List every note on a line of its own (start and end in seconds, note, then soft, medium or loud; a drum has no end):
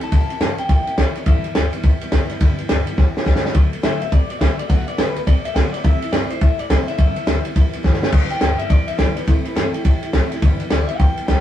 0.00 0.12 A3 soft
0.00 0.12 E4 medium
0.00 0.12 G4 medium
0.00 0.56 A5 loud
0.00 muted upright bass stroke medium
0.00 ride medium
0.12 0.23 C#2 medium
0.12 0.30 C#3 medium
0.12 0.30 E3 medium
0.12 0.30 A#3 medium
0.12 0.31 C#4 medium
0.12 0.28 G4 loud
0.12 kick loud
0.12 ride medium
0.29 0.40 A#3 soft
0.29 0.41 C#4 medium
0.29 0.40 G4 medium
0.29 muted upright bass stroke medium
0.29 ride medium
0.40 0.51 G2 loud
0.40 0.58 C#3 medium
0.40 0.58 E3 medium
0.40 0.59 A#3 loud
0.40 0.58 C#4 loud
0.40 0.57 G4 loud
0.40 snare loud
0.40 ride medium
0.58 0.69 A#3 soft
0.58 0.70 C#4 medium
0.58 0.69 G4 medium
0.58 0.69 G5 medium
0.58 muted upright bass stroke medium
0.58 ride medium
0.69 0.80 A#2 loud
0.69 0.87 E3 medium
0.69 0.88 A#3 medium
0.69 0.87 C#4 medium
0.69 0.86 G4 medium
0.69 0.96 G5 loud
0.69 kick loud
0.69 ride medium
0.87 0.97 A#3 soft
0.87 0.98 C#4 medium
0.87 0.97 G4 medium
0.87 muted upright bass stroke medium
0.87 ride medium
0.98 1.08 A#2 loud
0.98 1.15 C#3 medium
0.98 1.16 E3 medium
0.98 1.16 A#3 medium
0.98 1.16 C#4 medium
0.98 1.14 G4 medium
0.98 1.25 C#5 medium
0.98 kick medium
0.98 snare loud
0.98 ride medium
1.15 1.27 A#3 soft
1.15 1.27 C#4 medium
1.15 1.26 G4 medium
1.15 muted upright bass stroke medium
1.15 snare soft
1.15 ride medium
1.26 1.37 G1 medium
1.26 1.44 G2 medium
1.26 1.44 D3 medium
1.26 1.45 E3 medium
1.26 1.45 G3 medium
1.26 1.44 B3 medium
1.26 1.43 G4 medium
1.26 2.09 E5 medium
1.26 kick loud
1.26 ride medium
1.44 1.55 E3 soft
1.44 1.55 G3 soft
1.44 1.55 B3 medium
1.44 1.55 G4 medium
1.44 muted upright bass stroke medium
1.44 ride medium
1.55 1.66 D2 medium
1.55 1.73 G2 medium
1.55 1.73 D3 medium
1.55 1.73 E3 medium
1.55 1.74 G3 loud
1.55 1.73 B3 medium
1.55 1.72 G4 medium
1.55 snare loud
1.55 ride medium
1.73 1.82 E3 medium
1.73 1.83 G3 medium
1.73 1.84 B3 medium
1.73 1.84 G4 medium
1.73 ride medium
1.83 1.94 F2 loud
1.83 2.01 E3 medium
1.83 2.02 G3 medium
1.83 2.01 B3 medium
1.83 1.99 G4 medium
1.83 kick loud
1.83 ride medium
2.00 2.12 E3 medium
2.00 2.13 G3 medium
2.00 2.12 B3 medium
2.00 2.11 G4 medium
2.00 muted upright bass stroke medium
2.00 ride medium
2.12 2.23 E2 loud
2.12 2.30 G2 medium
2.12 2.30 D3 medium
2.12 2.30 E3 medium
2.12 2.31 G3 loud
2.12 2.30 B3 medium
2.12 2.28 G4 loud
2.12 kick medium
2.12 snare loud
2.12 ride medium
2.30 2.40 E3 medium
2.30 2.40 G3 medium
2.30 2.41 B3 medium
2.30 2.40 G4 medium
2.30 snare soft
2.30 ride medium
2.40 2.52 G1 medium
2.40 2.58 G2 loud
2.40 2.58 D3 medium
2.40 2.59 E3 loud
2.40 2.58 G3 loud
2.40 2.57 B3 loud
2.40 2.56 G4 loud
2.40 kick loud
2.40 ride medium
2.57 2.68 E3 medium
2.57 2.69 G3 medium
2.57 2.69 B3 medium
2.57 2.68 G4 medium
2.57 ride medium
2.69 2.80 D2 medium
2.69 2.87 G2 medium
2.69 2.87 D3 medium
2.69 2.87 E3 medium
2.69 2.87 G3 loud
2.69 2.87 B3 loud
2.69 2.85 G4 medium
2.69 snare loud
2.69 ride medium
2.86 2.95 E3 medium
2.86 2.96 G3 medium
2.86 2.97 B3 medium
2.86 2.97 G4 medium
2.86 muted upright bass stroke medium
2.86 ride medium
2.96 3.09 F2 loud
2.96 3.15 E3 medium
2.96 3.16 G3 medium
2.96 3.15 B3 medium
2.96 3.14 G4 medium
2.96 kick loud
2.96 snare medium
3.15 3.25 E3 medium
3.15 3.25 G3 medium
3.15 3.26 B3 medium
3.15 3.26 G4 medium
3.15 muted upright bass stroke medium
3.15 snare medium
3.25 3.37 E2 medium
3.25 3.43 G2 medium
3.25 3.44 D3 medium
3.25 3.44 E3 medium
3.25 3.44 G3 loud
3.25 3.43 B3 loud
3.25 3.42 G4 medium
3.25 kick medium
3.25 snare medium
3.36 snare medium
3.43 3.53 E3 medium
3.43 3.54 G3 medium
3.43 3.54 B3 medium
3.43 3.54 G4 medium
3.43 muted upright bass stroke medium
3.43 snare medium
3.53 3.66 D2 medium
3.53 3.72 D3 medium
3.53 3.72 F#3 medium
3.53 3.73 A3 loud
3.53 3.72 B3 medium
3.53 3.70 F#4 loud
3.53 kick loud
3.53 ride medium
3.71 3.82 A3 medium
3.71 3.83 B3 medium
3.71 3.83 F#4 medium
3.71 ride medium
3.82 3.94 A2 medium
3.82 4.01 D3 medium
3.82 4.01 F#3 medium
3.82 4.01 A3 medium
3.82 4.01 B3 medium
3.82 3.99 F#4 medium
3.82 4.01 E5 loud
3.82 snare loud
3.82 ride medium
4.00 4.11 A3 soft
4.00 4.12 B3 medium
4.00 4.11 F#4 medium
4.00 4.12 E5 medium
4.00 muted upright bass stroke medium
4.00 ride medium
4.12 4.23 C3 medium
4.12 4.30 F#3 medium
4.12 4.30 A3 medium
4.12 4.30 B3 medium
4.12 4.27 F#4 medium
4.12 4.29 D5 medium
4.12 kick loud
4.12 ride medium
4.29 4.40 A3 soft
4.29 4.40 B3 soft
4.29 4.40 F#4 medium
4.29 4.36 D5 loud
4.29 muted upright bass stroke medium
4.29 ride medium
4.40 4.52 B2 medium
4.40 4.58 D3 medium
4.40 4.59 F#3 medium
4.40 4.59 A3 medium
4.40 4.58 B3 medium
4.40 4.56 F#4 medium
4.40 4.59 E5 medium
4.40 kick medium
4.40 snare loud
4.40 ride medium
4.57 4.68 A3 soft
4.57 4.69 B3 soft
4.57 4.69 F#4 medium
4.57 4.69 D5 loud
4.57 muted upright bass stroke medium
4.57 ride medium
4.69 4.81 D2 medium
4.69 4.87 D3 medium
4.69 4.87 F#3 medium
4.69 4.87 A3 medium
4.69 4.87 B3 medium
4.69 4.86 F#4 loud
4.69 4.87 F#5 loud
4.69 kick loud
4.69 ride medium
4.87 4.98 A3 soft
4.87 4.98 B3 soft
4.87 4.98 F#4 medium
4.87 4.99 D5 medium
4.87 muted upright bass stroke medium
4.87 ride medium
4.97 5.09 A2 medium
4.97 5.16 D3 medium
4.97 5.16 F#3 medium
4.97 5.16 A3 medium
4.97 5.16 B3 medium
4.97 5.14 F#4 medium
4.97 5.15 B4 medium
4.97 snare loud
4.97 ride medium
5.15 5.27 A3 soft
5.15 5.27 B3 medium
5.15 5.26 F#4 medium
5.15 5.21 B4 medium
5.15 muted upright bass stroke medium
5.15 ride medium
5.27 5.38 C3 loud
5.27 5.45 F#3 medium
5.27 5.45 A3 medium
5.27 5.44 B3 medium
5.27 5.43 F#4 medium
5.27 5.45 D5 loud
5.27 kick loud
5.27 ride medium
5.44 5.55 A3 soft
5.44 5.55 B3 soft
5.44 5.55 F#4 medium
5.44 5.55 E5 loud
5.44 muted upright bass stroke medium
5.44 ride medium
5.55 5.66 B2 loud
5.55 5.73 D3 medium
5.55 5.73 F#3 medium
5.55 5.74 A3 medium
5.55 5.73 B3 medium
5.55 5.71 F#4 medium
5.55 5.72 F#5 medium
5.55 kick medium
5.55 snare loud
5.55 ride medium
5.72 5.83 A3 soft
5.72 5.84 B3 medium
5.72 5.84 F#4 medium
5.72 5.84 D5 medium
5.72 muted upright bass stroke medium
5.72 snare soft
5.72 ride medium
5.84 5.95 C2 medium
5.84 6.02 C3 medium
5.84 6.02 E3 medium
5.84 6.02 A3 medium
5.84 6.02 E4 medium
5.84 6.01 G4 loud
5.84 6.12 E5 loud
5.84 kick loud
5.84 ride medium
6.01 6.12 E4 medium
6.01 6.13 G4 medium
6.01 muted upright bass stroke medium
6.01 ride medium
6.05 6.11 A3 soft
6.11 6.23 G2 medium
6.11 6.30 C3 medium
6.11 6.30 E3 medium
6.11 6.30 A3 medium
6.11 6.30 E4 medium
6.11 6.28 G4 medium
6.11 6.31 D5 medium
6.11 snare loud
6.11 ride medium
6.29 6.40 A3 medium
6.29 6.41 E4 medium
6.29 6.41 G4 medium
6.29 6.40 C5 medium
6.29 ride medium
6.40 6.52 A2 loud
6.40 6.58 E3 medium
6.40 6.59 A3 medium
6.40 6.58 E4 medium
6.40 6.56 G4 medium
6.40 6.59 E5 loud
6.40 kick loud
6.40 ride medium
6.58 6.69 A3 soft
6.58 6.70 E4 medium
6.58 6.69 G4 medium
6.58 6.70 D5 medium
6.58 muted upright bass stroke medium
6.58 ride medium
6.70 6.81 F#1 loud
6.70 6.88 C3 medium
6.70 6.88 E3 medium
6.70 6.88 A3 medium
6.70 6.87 E4 medium
6.70 6.85 G4 medium
6.70 6.87 C5 medium
6.70 kick medium
6.70 snare loud
6.70 ride medium
6.86 6.98 A3 medium
6.86 6.99 E4 soft
6.86 6.98 G4 medium
6.86 6.97 E5 medium
6.86 muted upright bass stroke medium
6.86 snare soft
6.86 ride medium
6.98 7.09 G1 loud
6.98 7.16 G2 medium
6.98 7.16 D3 medium
6.98 7.16 E3 medium
6.98 7.16 G3 medium
6.98 7.15 B3 loud
6.98 7.14 G4 medium
6.98 7.80 E5 medium
6.98 kick loud
6.98 ride medium
7.15 7.26 E3 soft
7.15 7.26 G3 soft
7.15 7.27 B3 medium
7.15 7.26 G4 medium
7.15 muted upright bass stroke medium
7.15 ride medium
7.26 7.37 D2 medium
7.26 7.44 G2 medium
7.26 7.45 D3 medium
7.26 7.45 E3 medium
7.26 7.45 G3 medium
7.26 7.44 B3 medium
7.26 7.43 G4 loud
7.26 snare loud
7.26 ride medium
7.44 7.54 E3 medium
7.44 7.55 G3 medium
7.44 7.56 B3 medium
7.44 7.55 G4 medium
7.44 ride medium
7.55 7.67 F2 loud
7.55 7.73 E3 medium
7.55 7.74 G3 medium
7.55 7.73 B3 medium
7.55 7.72 G4 medium
7.55 kick loud
7.55 ride medium
7.73 7.83 E3 soft
7.73 7.83 G3 medium
7.73 7.83 B3 medium
7.73 7.84 G4 medium
7.73 muted upright bass stroke medium
7.73 ride medium
7.83 7.95 E2 medium
7.83 8.02 G2 medium
7.83 8.02 D3 medium
7.83 8.02 E3 medium
7.83 8.02 G3 medium
7.83 8.02 B3 medium
7.83 8.00 G4 medium
7.83 kick medium
7.83 snare medium
7.94 snare medium
8.01 8.12 E3 medium
8.01 8.12 G3 medium
8.01 8.13 B3 medium
8.01 8.13 G4 medium
8.01 snare loud
8.12 8.24 G1 medium
8.12 8.30 G2 medium
8.12 8.31 D3 loud
8.12 8.31 E3 medium
8.12 8.31 G3 medium
8.12 8.30 B3 loud
8.12 8.29 G4 loud
8.12 kick loud
8.12 crash loud
8.30 8.41 E3 soft
8.30 8.41 G3 soft
8.30 8.42 B3 medium
8.30 8.41 G4 medium
8.30 8.58 G5 medium
8.30 muted upright bass stroke medium
8.30 ride medium
8.41 8.52 D2 medium
8.41 8.59 G2 medium
8.41 8.60 D3 medium
8.41 8.60 E3 medium
8.41 8.60 G3 medium
8.41 8.58 B3 medium
8.41 8.57 G4 medium
8.41 snare loud
8.41 ride medium
8.58 8.68 E3 soft
8.58 8.69 G3 medium
8.58 8.70 B3 medium
8.58 8.70 G4 medium
8.58 8.70 E5 medium
8.58 muted upright bass stroke medium
8.58 ride medium
8.69 8.81 F2 loud
8.69 8.88 E3 medium
8.69 8.88 G3 medium
8.69 8.87 B3 medium
8.69 8.86 G4 medium
8.69 8.88 D5 medium
8.69 kick loud
8.69 ride medium
8.87 8.97 E3 soft
8.87 8.98 G3 soft
8.87 8.98 B3 soft
8.87 8.98 G4 medium
8.87 8.98 E5 medium
8.87 muted upright bass stroke medium
8.87 ride medium
8.98 9.10 B1 loud
8.98 9.16 G2 medium
8.98 9.16 D3 medium
8.98 9.17 E3 medium
8.98 9.17 G3 medium
8.98 9.15 B3 medium
8.98 9.14 G4 medium
8.98 9.16 D5 medium
8.98 kick medium
8.98 snare loud
8.98 ride medium
9.16 9.26 E3 soft
9.16 9.28 G3 medium
9.16 9.27 B3 medium
9.16 9.27 G4 medium
9.16 9.28 B4 medium
9.16 muted upright bass stroke medium
9.16 snare soft
9.16 ride medium
9.27 9.38 C2 loud
9.27 9.45 C3 medium
9.27 9.45 E3 medium
9.27 9.46 A3 medium
9.27 9.46 E4 medium
9.27 9.44 G4 medium
9.27 9.45 A4 medium
9.27 kick loud
9.27 ride medium
9.45 9.56 A3 soft
9.45 9.56 E4 medium
9.45 9.56 G4 medium
9.45 9.55 B4 medium
9.45 ride medium
9.55 9.67 G2 medium
9.55 9.74 C3 medium
9.55 9.74 E3 medium
9.55 9.74 A3 medium
9.55 9.74 E4 medium
9.55 9.72 G4 medium
9.55 9.73 A4 medium
9.55 snare loud
9.55 ride medium
9.73 9.84 A3 soft
9.73 9.84 E4 medium
9.73 10.57 G4 loud
9.73 9.84 G4 medium
9.73 muted upright bass stroke medium
9.73 ride medium
9.83 9.96 A2 loud
9.83 10.02 E3 medium
9.83 10.03 A3 medium
9.83 10.03 E4 medium
9.83 10.01 G4 medium
9.83 kick loud
9.83 ride medium
10.02 10.14 A3 soft
10.02 10.14 E4 medium
10.02 10.13 G4 medium
10.02 muted upright bass stroke medium
10.02 ride medium
10.13 10.24 A1 loud
10.13 10.31 C3 medium
10.13 10.32 E3 medium
10.13 10.32 A3 loud
10.13 10.32 E4 medium
10.13 10.31 G4 loud
10.13 kick medium
10.13 snare loud
10.13 ride medium
10.31 10.44 A3 medium
10.31 10.43 E4 medium
10.31 10.42 G4 medium
10.31 muted upright bass stroke medium
10.31 snare soft
10.31 ride medium
10.42 10.53 G1 loud
10.42 10.61 G2 loud
10.42 10.61 D3 medium
10.42 10.61 E3 loud
10.42 10.61 G3 loud
10.42 10.61 B3 loud
10.42 10.60 G4 loud
10.42 kick loud
10.42 ride loud
10.60 10.71 E3 medium
10.60 10.71 G3 medium
10.60 10.72 B3 medium
10.60 10.71 G4 medium
10.60 muted upright bass stroke medium
10.60 ride medium
10.70 10.81 D2 loud
10.70 10.89 G2 medium
10.70 10.89 D3 medium
10.70 10.90 E3 medium
10.70 10.90 G3 medium
10.70 10.89 B3 loud
10.70 10.88 G4 medium
10.70 10.87 D5 loud
10.70 snare loud
10.70 ride medium
10.87 11.00 G3 medium
10.87 11.00 B3 medium
10.87 11.00 G4 medium
10.87 10.98 E5 loud
10.87 ride medium
10.92 10.99 E3 soft
10.98 11.11 F2 loud
10.98 11.18 E3 medium
10.98 11.19 G3 medium
10.98 11.26 G5 medium
10.98 kick loud
10.98 ride medium
11.03 11.18 B3 medium
11.03 11.17 G4 medium
11.17 11.28 E3 soft
11.17 11.29 G3 soft
11.17 11.29 B3 medium
11.17 11.29 G4 medium
11.17 muted upright bass stroke medium
11.17 ride medium
11.27 11.39 E2 loud
11.27 11.40 G2 medium
11.27 11.40 D3 medium
11.27 11.40 E3 medium
11.27 11.40 G3 medium
11.27 11.40 B3 medium
11.27 11.40 G4 medium
11.27 11.40 G5 medium
11.27 kick medium
11.27 snare loud
11.27 ride medium